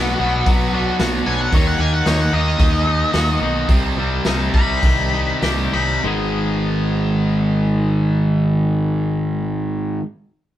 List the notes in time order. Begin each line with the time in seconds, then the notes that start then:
Already playing: B1 B2 F#3 B3 D4 F#4
0.19 B1 B2 F#3 B3
0.46 B1 B2 F#3 B3, kick, open hi-hat
0.73 B2 F#3 B3 D4
0.99 B1 B2 F#3 B3 F#4, snare, open hi-hat
1.26 B1 B2 F#3 B3 D4 G#5
1.41 F#5
1.52 D#2 D#3 A#3 D#4 C#5, kick, open hi-hat
1.67 F#5
1.79 D#2 D#3 A#3 D#4 G#5
1.94 F#5
2.05 D#2 D#3 A#3 D#4 C#5, snare, open hi-hat
2.21 F#5
2.33 D#2 D#3 A#3 D#4 D#5
2.59 D#2 D#3 A#3 D#4, kick, open hi-hat
2.87 D#3 A#3 D#4
3.13 D#2 D#3 A#3 D#4 F#4, snare, open hi-hat
3.41 B1 D#3 A#3 D#4
3.69 C2 C3 G3 C4, kick, open hi-hat
3.97 C2 C3 G3 C4
4.25 C2 C3 G3 C4 D#4, snare, open hi-hat
4.54 C2 C3 G3 C4 B5, kick
4.83 C2 C3 D#3 G3 C4, kick, open hi-hat
5.13 C3 G3 C4 D#4
5.42 C2 C3 G3 C4 G4, snare, open hi-hat
5.73 C2 C3 G3 C4 D#4 B5
6.03 G#1 G#2 D#3 B3 D#4
6.07 G#3 G#4